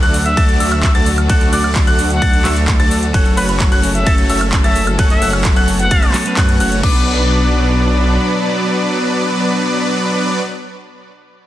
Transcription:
Already playing: D3 F#3 A3 D4 F#4 A4
0.03 D2 A3 D4 F#4 D5 F#5 F#6, closed hi-hat, shaker
0.14 open hi-hat, shaker
0.26 E5, closed hi-hat, shaker
0.36 D2 F#3 A3 D4 F#4 A4 D5 A5 A6, kick, closed hi-hat, ride, shaker
0.49 closed hi-hat, shaker
0.60 D2 A3 D4 F#4 D5 E5 E6, open hi-hat, shaker
0.72 E5, closed hi-hat, high woodblock, shaker
0.83 E5, kick, clap, closed hi-hat, ride, shaker
0.95 D2 A3 D4 F#4 D5 A5 A6, closed hi-hat, shaker
1.06 open hi-hat, shaker
1.18 closed hi-hat, high woodblock, shaker
1.28 D2 F#3 A3 D4 F#4 A4 D5 F#5 F#6, kick, closed hi-hat, ride, shaker
1.41 closed hi-hat, shaker
1.53 D2 A3 D4 F#4 D5 F#5 F#6, open hi-hat, shaker
1.64 closed hi-hat, high woodblock, shaker
1.75 kick, clap, closed hi-hat, ride, shaker
1.87 D2 A3 D4 F#4 D5 F#5 F#6, closed hi-hat, shaker
1.99 open hi-hat, shaker
2.10 F#5, closed hi-hat, shaker
2.22 D2 A3 D4 F#4 D5 A5 A6, kick, closed hi-hat, ride, shaker
2.33 closed hi-hat, shaker
2.44 D2 F#3 A3 D4 F#4 A4 D5 E5 E6, clap, open hi-hat, shaker
2.56 closed hi-hat, shaker
2.68 kick, clap, closed hi-hat, ride, shaker
2.80 D2 A3 D4 F#4 D5 A5 A6, closed hi-hat, shaker
2.91 open hi-hat, shaker
3.03 closed hi-hat, shaker
3.13 F#1 F#3 A3 C#4 F#4 A4 C#5 F#5 F#6, kick, closed hi-hat, ride, shaker
3.26 closed hi-hat, shaker
3.37 F#1 A3 C#4 F#4 B4 C#5 F#5 F#6, open hi-hat, shaker
3.49 B4, closed hi-hat, shaker
3.60 kick, clap, closed hi-hat, ride, shaker
3.72 F#1 A3 C#4 F#4 C#5 F#5 F#6, closed hi-hat, shaker
3.83 open hi-hat, shaker
3.95 E5, closed hi-hat, shaker
4.05 F#1 F#3 A3 C#4 F#4 A4 C#5 A5 A6, kick, closed hi-hat, ride, shaker
4.18 closed hi-hat, shaker
4.30 F#1 A3 C#4 F#4 C#5 E5 E6, open hi-hat, shaker
4.41 closed hi-hat, high woodblock, shaker
4.52 kick, clap, closed hi-hat, ride, shaker
4.64 F#1 A3 C#4 F#4 C#5 E5 A5 A6, closed hi-hat, shaker
4.76 open hi-hat, shaker
4.87 closed hi-hat, high woodblock, shaker
4.98 F#1 F#3 A3 B3 C#4 F#4 A4 C#5 F#5 F#6, kick, closed hi-hat, ride, shaker
5.10 E5, closed hi-hat, shaker
5.22 F#1 A3 C#4 F#4 C#5 F#5 F#6, open hi-hat, shaker
5.33 closed hi-hat, high woodblock, shaker
5.45 kick, clap, closed hi-hat, ride, shaker
5.56 F#1 A3 C#4 F#4 C#5 F#5 F#6, closed hi-hat, shaker
5.68 open hi-hat, shaker
5.79 F#5, closed hi-hat, shaker
5.91 F#1 A3 C#4 F#4 C#5 A5 A6, kick, closed hi-hat, ride, shaker
6.03 closed hi-hat, high woodblock, shaker
6.14 F#3 A3 C#4 A4, clap, open hi-hat, shaker
6.25 F#3 A3 C#4 B4, closed hi-hat, shaker
6.37 F#2 A3 C#4 F#4 C#5 F#5 F#6, kick, clap, closed hi-hat, ride, shaker
6.49 closed hi-hat, shaker
6.60 F#1 A3 C#4 F#4 C#5 F#5 F#6, open hi-hat, shaker
6.72 closed hi-hat, shaker
6.82 B1 B2 F#3 B3 D4 B4 D5 D6, kick, crash

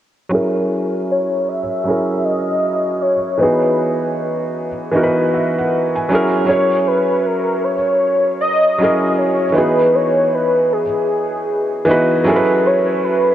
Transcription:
0.29 F#3 C#4 E4
0.33 G#4 A#4
1.11 C#5
1.49 E5
1.84 F#3 C#4 E4
1.88 G#4 A#4
2.25 D#5
3.01 C#5
3.38 E3 B3 D#4 F#4 B4
3.43 G#4
4.91 E3 B3 D#4
4.95 F#4 A#4
5.03 B4
5.34 E5
5.58 F#5
5.95 G#5
6.09 F#3 C#4 E4
6.13 G#4 A#4
6.45 F#3 C#4 E4 C#5
6.49 G#4 C#5
6.87 B4
7.26 A#4
7.64 C#5
8.41 D#5
8.79 F#3 C#4 E4 G#4
8.84 A#4
9.13 D#5
9.18 C#5
9.53 E3 B3 D#4 B4
9.57 F#4 G#4
9.95 C#5
10.34 B4
10.73 G#4
11.85 E3 B3 D#4
11.89 F#4 B4
12.24 F#3 C#4 E4 G#4
12.29 A4 A#4
12.36 B4
12.66 C#5
13.04 B4

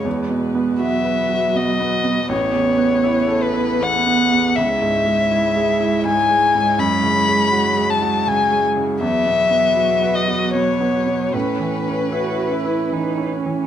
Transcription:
Already playing: G#3
0.05 E2 B3 F#4 B4
0.29 B2
0.55 B3
0.79 F#3 F#4 E5
1.05 B4
1.29 F#4
1.55 B2 D#5
1.80 B3
2.04 B2
2.29 A1 B3 E4 C#5
2.53 E2
2.78 B3
3.04 E4
3.28 A4
3.42 B4
3.54 E4
3.80 E2 F#5
4.06 B3
4.32 E2
4.56 C#2 G#3 E4 C#5 E5
4.82 G#2
5.06 G#3
5.31 E4
5.56 G#4
5.80 E4
6.05 G#2 G#5
6.30 G#3
6.55 G#2
6.78 F#2 G#3 B5
7.03 C#3
7.28 G#3
7.52 F#4
7.77 G#4
7.90 A5
8.02 F#4
8.27 C#3 G#5
8.51 G#3
8.77 C#3
9.01 E2 F#3 B3 F#4 B4 E5
9.26 B2
9.50 B3
9.77 F#4
10.02 B4
10.15 D#5
10.28 F#4
10.54 B2 C#5
10.81 B3
11.06 B2
11.32 A2 E3 C#4 B4
11.59 E3
11.87 C#4
12.12 E4 F#4
12.39 B4
12.52 E4
12.65 E4
12.92 E3 D#4
13.18 C#4
13.34 C#4
13.46 E3

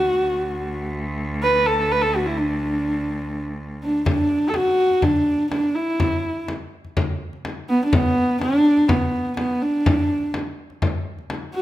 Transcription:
Already playing: D2 F#4
0.20 D2
1.43 B4
1.66 A4
1.92 B4
2.02 A4
2.16 F#4
2.26 E4
2.37 D4
3.83 D4
4.06 D4, frame drum
4.30 frame drum
4.49 A4
4.54 F#4, frame drum
4.91 frame drum
5.02 D4, frame drum
5.39 frame drum
5.51 D4, frame drum
5.75 E4
6.00 frame drum
6.25 frame drum
6.48 frame drum
6.85 frame drum
6.97 frame drum
7.33 frame drum
7.45 frame drum
7.69 B3
7.85 D4
7.93 B3, frame drum
8.18 frame drum
8.41 D4, frame drum
8.77 frame drum
8.88 B3, frame drum
9.25 frame drum
9.37 B3, frame drum
9.61 D4
9.86 frame drum
10.10 frame drum
10.34 frame drum
10.70 frame drum
10.82 frame drum
11.18 frame drum
11.30 frame drum
11.54 F#4

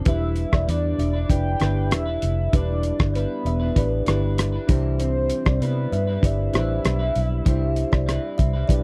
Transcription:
0.05 E1 G3 D4 E4 G4 B4 E5, kick, closed hi-hat
0.36 closed hi-hat
0.53 E1 D5, kick, cross-stick
0.67 E2 G3 D4 E4 B4 D5, closed hi-hat
0.98 E1 E5, closed hi-hat
1.13 D4 E4 B4
1.29 F1 D4 E4 G4 B4 D5 G5, kick, closed hi-hat
1.60 G1 G3 D4 E4 G4 B4, cross-stick, closed hi-hat
1.91 E1 E5, cross-stick, closed hi-hat
2.06 D4 E4 B4
2.22 F1, closed hi-hat
2.52 E1 G3 D4 E4 G4 B4 D5, kick, closed hi-hat
2.83 closed hi-hat
2.99 G1 D5, kick, cross-stick
3.14 G3 D4 E4 B4, closed hi-hat
3.45 E1 E5, closed hi-hat
3.60 D4 E4 B4
3.75 A1 D4 E4 G4 B4 D5, kick, closed hi-hat
4.06 G1 G3 D4 E4 G4 B4, cross-stick, closed hi-hat
4.38 cross-stick, closed hi-hat
4.52 D4 E4 B4
4.67 C2 C3 E3 G3 C4 D4 E4 G4 C5, kick, closed hi-hat
5.00 C5, closed hi-hat
5.30 closed hi-hat
5.46 C2 D5, kick, cross-stick
5.60 C3 G3 C4 E4 B4, closed hi-hat
5.92 G2 E5, closed hi-hat
6.07 G3 C4 E4 B4
6.22 G1 D4 E4 G4 B4 D5 E5, kick, closed hi-hat
6.53 A1 G3 C4 D4 E4 G4 B4 C5, cross-stick, closed hi-hat
6.85 B1, cross-stick, closed hi-hat
6.99 G3 C4 E4 B4
7.16 B1, closed hi-hat
7.45 C2 G3 C4 D4 E4 G4 C5, kick, closed hi-hat
7.76 closed hi-hat
7.92 C2 D5, kick, cross-stick
8.06 G3 C4 E4 B4, cross-stick, closed hi-hat
8.38 C2 E5, kick, closed hi-hat
8.53 G3 C4 E4 B4
8.68 B1 D4 E4 G4 B4 D5, kick, closed hi-hat

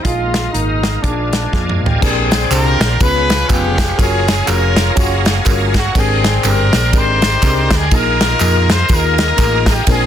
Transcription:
Already playing: D#5
0.02 A#1 A#2 G#3 A#3 D#4 F4 G#4 A#4 F5, kick, closed hi-hat
0.34 snare, closed hi-hat
0.53 G#1 G#3 A#3 D#4 F4 A#4, closed hi-hat
0.83 snare, closed hi-hat
1.02 A#1 A#2 F3 G#3 A#3 D4 F4 G#4 D5 F5 G#5, kick, closed hi-hat
1.33 snare, closed hi-hat
1.52 F2 A#3 D4 F4 G#4, kick, snare
1.69 mid tom
1.81 A1 G4
1.86 floor tom
2.01 A#1 A#2 C4 D4 G4 G#4 A#4 C5 D5 G5, kick, crash, tambourine
2.31 snare, ride, tambourine
2.50 C2 C4 D4 F4 G4 G#4 A#4 C5, clap, ride, tambourine
2.80 A#1, snare, ride, tambourine
3.00 C#2 C#3 B3 C#4 F4 G#4 B4 C#5 F5, kick, ride, tambourine
3.30 snare, ride, tambourine
3.48 F1 B3 C#4 F4 G4 G#4 B4, kick, clap, ride, tambourine
3.78 kick, snare, ride, tambourine
3.96 F#1 C#4 F4 F#4 G#4 A#4 C#5 A#5, kick, ride, tambourine
4.28 snare, ride, tambourine
4.46 F1 C#4 F4 F#4 G#4 A#4 C#5, clap, ride, tambourine
4.76 snare, ride, tambourine
4.95 F#1 A#3 C#4 F4 F#4 G#4 C#5, kick, ride, tambourine
5.25 snare, ride, tambourine
5.45 G1 C#4 F4 F#4 G#4 A#4, kick, clap, ride, tambourine
5.74 F#4, kick, snare, ride, tambourine
5.95 G#1 G#2 C4 D4 G4 G#4 A#4 D5 G5 C6, kick, ride, tambourine
6.24 snare, ride, tambourine
6.44 G1 C4 D4 G4 G#4 A#4, clap, ride, tambourine
6.73 A#1, snare, ride, tambourine
6.93 C4 D4 D#4 G4 G#4 A#4 C5, kick, ride, tambourine
7.22 snare, ride, tambourine
7.42 C2 C4 D4 G4 G#4 A#4, kick, clap, ride, tambourine
7.71 D2 G#4, kick, snare, ride, tambourine
7.91 A#1 A#2 A#3 D#4 F4 G#4 A#4 D#5 F5 G#5, kick, ride, tambourine
8.21 snare, ride, tambourine
8.40 F2 A#3 D#4 F4 G#4 A#4, clap, ride, tambourine
8.69 C5, snare, ride, tambourine
8.89 D#2 A#3 D#4 F4 G#4 A#4, kick, ride, tambourine
9.18 snare, ride, tambourine
9.37 A1 A#3 D#4 F4 G#4 A#4, kick, clap, ride, tambourine
9.66 G4, kick, snare, ride, tambourine
9.87 A#1 A#2 C4 D4 F4 G#4 A#4 D5 C6, kick, ride, tambourine

